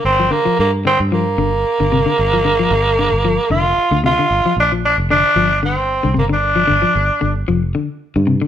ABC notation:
X:1
M:4/4
L:1/16
Q:"Swing 16ths" 1/4=113
K:Gm
V:1 name="Tenor saxophone"
C2 B,2 B,2 C2 B,8- | B,8- B,2 F4 F2- | F2 D2 D2 D4 C4 B, D- | D6- D z8 z |]
V:2 name="Clean electric guitar" clef=bass
z F, D, F,2 z D,2 F,2 D,2 z D, C, D, | z F, D, F,2 z D,2 F,2 D,2 z D, C, D, | z F, z F,2 z D,2 F,2 D,2 z D, C, D, | z F, D, F,2 z D,2 F,2 D,2 z D, C, D, |]
V:3 name="Fingered electric bass" clef=bass
G,,,2 z2 G,,3 G,,3 G,,,2 z G,,,2 z | G,,,4 G,,,3 G,,,2 z F,,,2 z D,,2 z | G,,, z B,,,3 F,,,2 z G,,,4- G,,, C,, G,,,2- | G,,,2 G,,, z G,,, z G,,,2 F,,,2 z3 G,,2 z |]